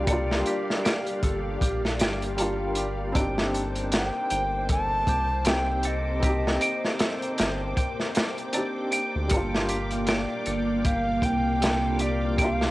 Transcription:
Already playing: C2 G3 A#3 D4 F4 G4 A#4 D5 F5
0.04 G3 A#3, kick, closed hi-hat
0.08 D4 A4
0.13 F4
0.31 snare
0.46 G4, closed hi-hat
0.70 snare
0.85 G5, snare, closed hi-hat
1.07 closed hi-hat
1.23 G1 A4, kick, closed hi-hat
1.61 A#1 G4, kick, closed hi-hat
1.85 snare
1.99 G1 G5, snare, closed hi-hat
2.22 closed hi-hat
2.37 G3 A#3 D4 A4, closed hi-hat
2.41 F4
2.75 G4, closed hi-hat
3.12 G1 C4 D4 C5 G5 D6, kick, closed hi-hat
3.18 D#4 G4
3.38 snare
3.54 A4, closed hi-hat
3.75 closed hi-hat
3.92 G4, snare, closed hi-hat
3.97 G5
4.30 G1 G5, closed hi-hat
4.69 A4 A5, kick, closed hi-hat
5.07 C2 G4, kick, closed hi-hat
5.45 C4 D#4 G5, snare, closed hi-hat
5.49 G4 G5
5.83 A4, closed hi-hat
5.87 D#5
6.20 C4 G4, kick, closed hi-hat
6.26 D#4 G4
6.47 snare
6.61 G5, closed hi-hat
6.85 snare
6.99 A4, snare, closed hi-hat
7.22 closed hi-hat
7.38 G1 G4, snare, closed hi-hat
7.77 G5, kick, closed hi-hat
8.00 snare
8.15 G3, snare, closed hi-hat
8.38 closed hi-hat
8.53 C4 D4 D#4 D5, closed hi-hat
8.57 G4
8.92 G5, closed hi-hat
9.16 D2
9.28 G1 G3 A#3 A4 F5, kick, closed hi-hat
9.33 D4 F4
9.55 snare
9.69 G4, closed hi-hat
9.91 closed hi-hat
10.07 D5 G5, snare, closed hi-hat
10.46 G1 A4, closed hi-hat
10.85 G4 F5, kick, closed hi-hat
11.22 C2 G5, kick, closed hi-hat
11.61 G3 A#3 D4 A4, snare, closed hi-hat
11.65 F4
11.99 G4 D5, closed hi-hat
12.36 G3 A#3 G5, kick, closed hi-hat
12.41 D4 F4 F5
12.61 snare

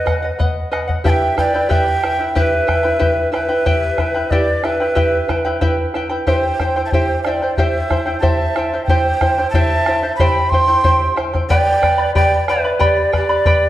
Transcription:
Already playing: B4 D#5
0.06 B4 D#5 F#5, bombo rim, bombo low
0.22 D#5 F#5
0.39 B4 D#5 F#5, bombo low
0.71 B4 D#5 F#5, bombo rim
0.88 D#5 F#5, bombo low
1.04 E4 G4 B4 E5 G5 A5, bombo low
1.10 G5
1.37 E4 B4 D5 E5 G5, bombo rim, bombo low
1.54 E4 B4 G5
1.69 E4 G4 B4 E5 G5, bombo low
2.03 E4 B4 E5 G5, bombo rim
2.18 E4 B4 G5
2.35 E4 G4 B4 E5 G5, bombo low
2.67 E4 B4 E5 G5, bombo rim, bombo low
2.83 E4 B4 G5
2.99 E4 G4 B4 E5 G5, bombo low
3.32 E4 B4 E5 G5, bombo rim
3.49 E4 B4 G5
3.66 E4 G4 B4 E5 G5, bombo low
3.98 E4 B4 E5 G5, bombo rim, bombo low
4.14 E4 B4 G5
4.31 E4 G4 B4 D5 E5 G5, bombo low
4.64 E4 B4 E5 G5, bombo rim
4.80 E4 B4 G5
4.95 E4 G4 B4 E5 G5, bombo low
5.28 E4 B4 E5 G5, bombo rim, bombo low
5.45 E4 B4 G5
5.61 E4 G4 B4 E5 G5, bombo low
5.94 E4 B4 E5 G5, bombo rim
6.09 E4 B4 G5
6.27 E4 G4 C5 E5 G5, bombo low
6.60 E4 C5 E5 G5, bombo rim, bombo low
6.76 E4 C5 G5
6.85 E5 A5
6.91 E4 G4 C5 E5 G5, bombo low
7.23 E4 C5 D5 E5 G5, bombo rim
7.27 G5
7.42 E4 C5 G5
7.56 E4 G4 C5 E5 G5, bombo low
7.90 E4 C5 E5 G5, bombo rim, bombo low
8.06 E4 C5 G5
8.20 E4 G4 C5 E5 G5 A5, bombo low
8.56 E4 C5 E5 G5, bombo rim
8.73 E4 C5 G5
8.85 C5 G5, bombo low
8.89 E4 G4 C5 E5 G5
9.21 E4 C5 E5 G5, bombo rim, bombo low
9.38 E4 C5 G5
9.50 E5 A5, bombo low
9.55 E4 G4 C5 E5 G5
9.86 E4 C5 E5 G5, bombo rim
10.03 E4 C5 G5
10.16 G4 E5 G5 B5, bombo low
10.20 E4 C5 G5
10.50 E4 E5 G5 C6, bombo low
10.54 C5 G5
10.68 E4 C5 G5
10.84 E4 G4 C5 E5 G5, bombo low
11.16 E4 C5 E5 G5, bombo rim
11.33 E4 C5 G5, bombo low
11.49 G4 B4 D5 G5 B5, bombo low
11.82 B4 D5 G5 B5, bombo rim, bombo low
11.98 B4 D5 B5
12.15 G4 B4 D5 G5 B5, bombo low
12.48 B4 D5 E5 G5 B5, bombo rim
12.64 B4 D5 B5
12.79 G4 B4 D5 G5 B5, bombo low
13.12 B4 D5 G5 B5, bombo rim, bombo low
13.16 G4
13.29 B4 D5 B5
13.45 G4 B4 D5 G5 B5, bombo low

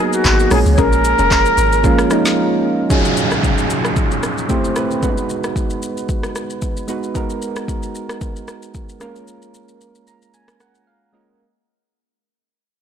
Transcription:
Already playing: F#3 A#3
0.00 B3 D#4 G#4
0.06 G#4
0.13 F#4, shaker
0.25 G#1, kick, clap, shaker
0.39 shaker
0.50 A#1 F3 G#3 A#3 C#4 F#4 G#4 A#4, cross-stick, open hi-hat, shaker
0.59 G#4
0.66 C#2, shaker
0.72 C#5
0.78 A#1 C#4 G#4 A#4, kick, shaker
0.92 shaker
1.05 shaker
1.19 F1 C#4 G#4 A#4, shaker
1.31 kick, clap, shaker
1.46 shaker
1.58 G#1, shaker
1.73 shaker
1.83 F3 G#3 A#3 C#4 F4, kick, shaker
1.98 cross-stick, shaker
2.10 F3 G#3 A#3 C#4 D#4, cross-stick, shaker
2.25 snare, shaker
2.89 F#3 C#4 D#4 F4 G#4, kick, downlifter, shaker
3.05 shaker
3.17 shaker
3.31 cross-stick, shaker
3.43 kick, shaker
3.58 shaker
3.70 shaker
3.85 cross-stick, shaker
3.96 kick, shaker
4.11 shaker
4.23 cross-stick, shaker
4.38 shaker
4.49 A3 C4 E4 G4 C5, kick, shaker
4.64 shaker
4.75 A3 C4 E4 G4 B4, cross-stick, shaker
4.91 shaker
5.02 G#3 B3 C#4 F#4 B4, kick, shaker
5.09 D#4
5.17 shaker
5.30 shaker
5.44 cross-stick, shaker
5.56 kick, shaker
5.70 shaker
5.83 shaker
5.97 shaker
6.09 kick, shaker
6.23 cross-stick, shaker
6.36 cross-stick, shaker
6.50 shaker
6.62 kick, shaker
6.77 shaker
6.88 G#3 B3 D#4 F#4 B4, shaker
7.03 shaker
7.14 G#3 B3 D#4 F#4 A#4, kick, shaker
7.30 shaker
7.42 shaker
7.56 cross-stick, shaker
7.68 kick, shaker
7.83 shaker
7.95 shaker
8.09 cross-stick, shaker
8.21 kick, shaker
8.36 shaker
8.48 cross-stick, shaker
8.63 shaker
8.74 kick, shaker
8.89 shaker
9.00 G#3 A#3 C#4 F4 A#4, cross-stick, shaker
9.16 shaker
9.28 shaker
9.42 shaker
9.54 shaker
9.68 shaker
9.81 shaker
9.95 shaker
10.07 A#5, shaker
10.22 shaker
10.34 G#5, shaker
10.48 cross-stick, shaker
10.60 F#5, cross-stick, shaker
10.75 shaker
10.87 F5
11.12 G#3 A#3 C#4 F4 A#4 D#5

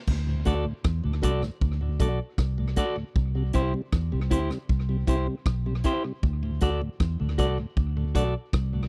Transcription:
0.07 D2, kick, crash
0.27 D2 A2
0.45 D2 A3 D4 F#4 A4 D5, kick, closed hi-hat
0.65 D2 A2
0.84 E2, kick, cross-stick
1.04 D2 A2
1.22 C2 A3 D4 F#4 A4 D5, kick, closed hi-hat
1.42 D2 A2, cross-stick
1.61 D2, kick
1.81 D2 A2
2.00 B1 A3 D4 F#4 A4 D5, kick, closed hi-hat
2.38 C2, kick, cross-stick
2.58 D2 A2
2.76 A3 D4 F#4 A4 D5, kick, closed hi-hat
2.96 D2 A2
3.16 C2, kick
3.35 C3 G3
3.53 C2 C4 E4 G4 C5, kick, closed hi-hat
3.74 C3 G3
3.92 E2, kick, cross-stick
4.12 C2 C3 G3
4.30 D2 C4 E4 G4 C5, kick, closed hi-hat
4.50 C3 G3, cross-stick
4.69 C2, kick
4.89 C3 G3
5.07 C2 C4 E4 G4 C5, kick, closed hi-hat
5.27 C3 G3
5.46 B1, kick, cross-stick
5.66 C3 G3
5.84 C4 E4 G4 C5, kick, closed hi-hat
6.04 C3 G3, muted clean electric guitar stroke
6.23 D2, kick
6.43 D2 A2
6.61 D2 A3 D4 F#4 A4 D5, kick, closed hi-hat
6.82 D2 A2
7.00 E2, kick, cross-stick
7.20 D2 A2
7.38 C2 A3 D4 F#4 A4 D5, kick, closed hi-hat
7.58 D2 A2
7.77 D2, kick
7.97 D2 A2
8.15 B1 A3 D4 F#4 A4 D5, kick, closed hi-hat
8.53 C2, kick, cross-stick
8.73 D2 A2

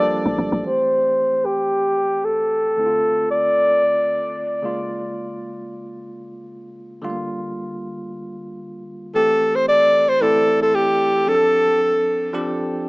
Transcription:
Already playing: F3 G3 A#3 D4 G4 A4 D5
0.26 A1
0.39 G1
0.52 A1
0.65 E3 A3 C4 G4 C5
1.45 G4
2.25 A4
2.77 D3 A3 C4 E4
2.86 F4
3.31 D5
4.62 C#3 G#3 A#3 F4
7.02 D3 G3 A3 F4
7.10 A#3
9.15 E3 A3 C4 G4 A4
9.55 C5
9.69 D5
10.09 C5
10.21 E3 A3 C4 E4 A4
10.62 A4
10.75 G4
11.27 F3 C4 D4 G#4 A4
11.35 A4
12.33 F3 C4 D4 G4

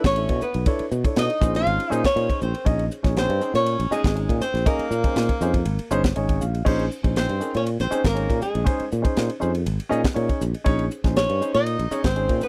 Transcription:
0.04 A1 C#4 C#5, kick, snare, ride
0.16 D4 E4 A4 E5, ride
0.29 B2, kick, ride
0.41 B3 B4, muted fretless electric bass stroke, hi-hat pedal
0.54 B1 A4 D5, ride
0.66 D4 E4 A4 C#5, kick, ride
0.79 muted fretless electric bass stroke, ride
0.91 B2, hi-hat pedal
1.04 D4 E4 A4 C#5, kick, ride
1.16 B2 D#4 D#5, snare, ride
1.30 ride
1.41 A#1 C#4 D#4 G#4 C5, kick, hi-hat pedal
1.55 F4 F5, snare, ride
1.67 G#1, ride
1.80 muted fretless electric bass stroke, ride
1.90 A#2 C#4 D#4 G#4 C5, hi-hat pedal
2.04 C#4 G#4 C#5, kick, snare, ride
2.15 A#2 C#4 D#4 G#4 C5, ride
2.29 kick, ride
2.41 A#1 C4 C5, hi-hat pedal
2.54 G#4 A#4, ride
2.65 A#1 C#4 D#4 G#4 D#5, kick, ride
2.79 ride
2.90 G#4 C#5, hi-hat pedal
3.03 A#1 C#4 D#4 G#4 C#5, kick, snare, ride
3.17 C4 C5, snare, ride
3.29 G2, ride
3.41 C#4 D#4 G#4 C5, hi-hat pedal
3.54 A#2 C#4 G#4 A#4 C#5, snare, ride
3.66 ride
3.79 A#1, ride
3.91 G#3 C#4 D#4 G#4 D#5, muted fretless electric bass stroke, hi-hat pedal
4.04 G#1 G#4, kick, snare, ride
4.15 C#4 D#4 G#4 D#5, ride
4.29 A#2, kick, ride
4.41 C4 C5, muted fretless electric bass stroke, hi-hat pedal
4.54 A#1 G#4 A#4, snare, ride
4.66 A#3 C#4 D#4 G#4 A#4 D#5, kick, ride
4.79 muted fretless electric bass stroke, ride
4.91 A#2, hi-hat pedal
5.04 C#4 D#4 G#4 C5, kick, ride
5.16 A#2, snare, ride
5.29 kick, ride
5.41 F2 C#4 D#4 G#4 C5, hi-hat pedal
5.54 G#4, kick, ride
5.65 G#1, ride
5.79 muted fretless electric bass stroke, ride
5.91 G1 C#4 D#4 G#4 C5 C#5, hi-hat pedal
6.04 G#4 C5, kick, snare, ride
6.16 G#1 C#4 D#4 G#4 C#5 D#5, ride
6.29 kick, ride
6.41 A#1 F5, hi-hat pedal
6.53 G#4 D#5, ride
6.65 A#1 C#4 D#4 G#4 C5, kick, crash
6.79 ride
6.90 G#4 C5, hi-hat pedal
7.03 A#1 C#4 D#4 G#4 C5, kick, ride
7.16 C4 C5, snare, ride
7.29 G2, ride
7.40 C#4 D#4 G#4 A#4, hi-hat pedal
7.54 A#2 C#4 G#4 C#5, ride
7.66 ride
7.80 A#1 C4 C5, snare, ride
7.91 C#4 D#4 G#4 C5, hi-hat pedal
8.04 G#1 G#4 A#4, kick, snare, ride
8.08 A#3
8.14 C#4 D#4 G#4 C#5, ride
8.30 A#2, kick, ride
8.42 G#3 G#4, muted fretless electric bass stroke, hi-hat pedal
8.53 A#1 G#4 C5, ride
8.64 C#4 D#4 G#4 C5, kick, ride
8.80 muted fretless electric bass stroke, ride
8.90 A#2 G#4 C#5, hi-hat pedal
9.02 C#4 D#4 G#4 C5, kick, ride
9.17 A#2, snare, ride
9.30 ride
9.40 F2 C#4 D#4 G#4 C5, hi-hat pedal
9.53 G#4 A#4, ride
9.66 G#1, ride
9.80 muted fretless electric bass stroke, ride
9.89 A#2 C#4 D#4 G#4 D#5, hi-hat pedal
10.04 kick, snare, ride
10.14 A#2 C#4 D#4 G#4 C#5, ride
10.29 kick, ride
10.41 A#1, hi-hat pedal
10.54 G#4 D#5, ride
10.64 A#1 C#4 D#4 G#4 C#5, kick, ride
10.79 ride
10.91 G#4 C5, hi-hat pedal
11.04 A#1 C#4 D#4 G#4 C5, kick, snare, ride
11.16 C#4 C#5, snare, ride
11.29 G2, ride
11.40 C#4 D#4 G#4 C5, hi-hat pedal
11.54 A#2 D#4 D#5, snare, ride
11.66 ride
11.79 A#1, ride
11.91 C#4 D#4 G#4 C#5, hi-hat pedal
12.04 G#1 C4 C5, kick, snare, ride
12.16 C#4 D#4 G#4 C5, ride
12.29 A#2, kick, ride
12.41 B3 B4, muted fretless electric bass stroke, hi-hat pedal

